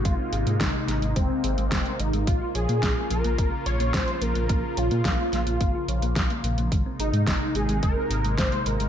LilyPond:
<<
  \new Staff \with { instrumentName = "Analog synth lead" } { \time 4/4 \key bes \minor \tempo 4 = 108 f'4 ees'4 c'4. ees'8 | f'8 aes'4 bes'4 des''8 c''8 bes'8~ | bes'8 f'8 f'2~ f'8 r8 | r8 ees'4 aes'8 bes'4 c''8 bes'8 | }
  \new Staff \with { instrumentName = "Synth arpeggio sound" } { \time 4/4 \key bes \minor aes16 c'16 aes'16 aes16 bes16 aes16 aes16 aes16 aes16 c'16 aes'16 aes16 bes16 aes16 aes16 aes16 | bes16 f'16 des''16 bes16 des'16 bes16 bes16 bes16 bes16 f'16 des''16 bes16 des'16 bes16 bes16 bes16 | bes16 f'16 des''16 bes16 des'16 bes16 bes16 bes16 bes16 f'16 des''16 bes16 des'16 bes16 bes16 bes16 | aes16 c'16 aes'16 aes16 bes16 aes16 aes16 aes16 aes16 c'16 aes'16 aes16 bes16 aes16 aes16 aes16 | }
  \new Staff \with { instrumentName = "Analog synth pad" } { \clef bass \time 4/4 \key bes \minor << { <c aes ees'>1 | <des f f'>1~ | <des f f'>1 | <c aes ees'>1 | } \\ { bes1~ | bes1~ | bes1 | bes1 | } >> }
  \new Staff \with { instrumentName = "Detuned saw bass" } { \clef bass \time 4/4 \key bes \minor aes,,16 r16 aes,,16 aes,16 aes,,16 r16 aes,,16 aes,,16 ges,,16 r16 aes,,16 aes,,16 ges,,16 r16 aes,,16 aes,,16 | bes,,16 r16 bes,,16 bes,16 bes,,16 r16 bes,,16 bes,,16 aes,,16 r16 bes,,16 bes,,16 bes,,16 r16 bes,,16 bes,,16 | bes,,16 r16 bes,,16 bes,16 bes,,16 r16 bes,,16 bes,,16 aes,,16 r16 bes,,16 bes,,16 bes,,16 r16 bes,,16 bes,,16 | aes,,16 r16 aes,,16 aes,16 aes,,16 r16 aes,,16 aes,,16 ges,,16 r16 aes,,16 aes,,16 aes,,16 r16 aes,,16 aes,,16 | }
  \new DrumStaff \with { instrumentName = "Drums" } \drummode { \time 4/4 <hh bd>8 hh16 hh16 <hh bd sn>8 <hh sn>16 hh16 <hh bd>8 hh16 hh16 <hh bd sn>16 hh16 hh16 hh16 | <hh bd>8 hh16 hh16 <hh bd sn>8 hh16 hh16 <hh bd>8 hh16 hh16 <hh bd sn>16 hh16 hh16 hh16 | <hh bd>8 hh16 hh16 <hh bd sn>8 <hh sn>16 hh16 <hh bd>8 hh16 hh16 <hh bd sn>16 hh16 hh16 hh16 | <hh bd>8 hh16 hh16 <hh bd sn>8 hh16 hh16 <hh bd>8 hh16 hh16 <hh bd sn>16 hh16 hh16 hh16 | }
>>